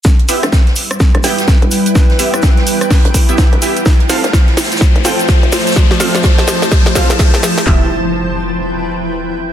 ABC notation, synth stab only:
X:1
M:4/4
L:1/16
Q:"Swing 16ths" 1/4=126
K:Ephr
V:1 name="Synth stab"
z2 [B,EGe] z6 z [B,EGg] z4 z | z2 [B,EGe] z8 [B,EGe]3 [B,EGe] z | z2 [CFAf] z6 z [CFAg] z4 z | z2 [CFAf] z6 z [CFAf] z4 z |
[B,EGe]2 z12 z2 |]